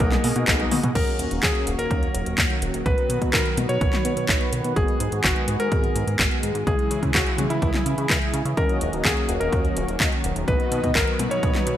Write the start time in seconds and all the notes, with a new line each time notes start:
Already playing: F#3 A#3 D#4 F#4 G#4 A#4 D#5 F#5 D#6
0.00 B1 B3, kick, closed hi-hat
0.12 clap, closed hi-hat, high tom
0.24 B2 A#3, open hi-hat
0.36 B2 B3 D#4 F#4 D#5, closed hi-hat
0.48 B1 B3, kick, clap, closed hi-hat
0.60 B3 D#4 F#4 D#5, closed hi-hat, high tom
0.71 B2 A#3, open hi-hat, mid tom
0.83 B2 B3, closed hi-hat, mid tom
0.95 D#2 D#3 F#3 A#3 C#4 F#4 A#4, kick, closed hi-hat, crash
1.07 closed hi-hat
1.19 D#1, closed hi-hat
1.31 D#1, closed hi-hat
1.43 D#2 G#4, kick, clap, closed hi-hat
1.55 closed hi-hat
1.67 D#1, closed hi-hat
1.79 D#1 A#4, closed hi-hat
1.91 D#2, kick, closed hi-hat
2.03 closed hi-hat
2.14 D#1, closed hi-hat
2.26 D#1, closed hi-hat
2.38 D#2, kick, clap, closed hi-hat
2.50 closed hi-hat
2.62 D#1, closed hi-hat
2.74 D#1, closed hi-hat
2.86 B1 B3 B4, kick, closed hi-hat
2.98 closed hi-hat
3.10 B2, closed hi-hat
3.22 B2, kick, closed hi-hat
3.33 B1 A#4, kick, clap, closed hi-hat
3.46 closed hi-hat
3.57 B2, closed hi-hat, high tom
3.69 B2 C#5, closed hi-hat
3.81 B1, kick, closed hi-hat
3.93 clap, closed hi-hat, high tom
4.05 B2, closed hi-hat
4.17 B2, closed hi-hat
4.29 B1, kick, clap, closed hi-hat
4.41 closed hi-hat
4.53 B2, closed hi-hat
4.64 B2, closed hi-hat
4.76 G#1 G#3 G#4, kick, closed hi-hat
4.88 closed hi-hat
5.00 G#2, closed hi-hat
5.12 G#2, closed hi-hat
5.24 G#1 F#4, kick, clap, closed hi-hat
5.36 closed hi-hat
5.48 G#2, closed hi-hat
5.60 G#2 A#4, closed hi-hat
5.72 G#1, kick, closed hi-hat
5.84 closed hi-hat
5.95 G#2, closed hi-hat
6.07 G#2, closed hi-hat
6.19 G#1, kick, clap, closed hi-hat
6.31 closed hi-hat
6.43 G#2, closed hi-hat
6.55 G#2, closed hi-hat
6.67 C#2 C#3 E3 E4 G#4, kick, closed hi-hat
6.79 closed hi-hat
6.91 C#3, closed hi-hat
7.03 C#3, kick, closed hi-hat
7.14 C#2 F#4, kick, clap, closed hi-hat
7.27 closed hi-hat
7.38 C#3, closed hi-hat, high tom
7.50 C#3 E4, closed hi-hat
7.62 C#2, kick, closed hi-hat
7.74 clap, closed hi-hat, high tom
7.86 C#3, closed hi-hat
7.98 C#3, closed hi-hat
8.10 C#2, kick, clap, closed hi-hat
8.22 closed hi-hat
8.34 C#3, closed hi-hat
8.45 C#3, closed hi-hat
8.57 D#2 D#3 F#3 A#3 C#4 F#4 A#4 D#5, kick, closed hi-hat
8.69 closed hi-hat
8.81 D#1, closed hi-hat
8.93 D#1 C#4 F#4 A#4 D#5, closed hi-hat
9.05 D#2 G#4, kick, clap, closed hi-hat
9.17 closed hi-hat
9.29 D#1 C#4 F#4 A#4 D#5, closed hi-hat
9.40 D#1 A#4, closed hi-hat
9.53 D#2, kick, closed hi-hat
9.65 closed hi-hat
9.76 D#1, closed hi-hat
9.88 D#1, closed hi-hat
10.00 D#2 C#4 F#4 A#4 D#5, kick, clap, closed hi-hat
10.12 C#4 F#4, closed hi-hat
10.24 D#1, closed hi-hat
10.36 D#1, closed hi-hat
10.48 B1 F#3 B3 D#4 F#4 B4 D#5, kick, closed hi-hat
10.60 closed hi-hat
10.72 B2, closed hi-hat
10.83 B2 B3 D#4 F#4 D#5, kick, closed hi-hat
10.95 B1 A#4, kick, clap, closed hi-hat
11.07 closed hi-hat
11.19 B2 B3 D#4 F#4 D#5, closed hi-hat, high tom
11.31 B2 C#5, closed hi-hat
11.43 B1, kick, closed hi-hat
11.55 clap, closed hi-hat, high tom
11.67 B2, closed hi-hat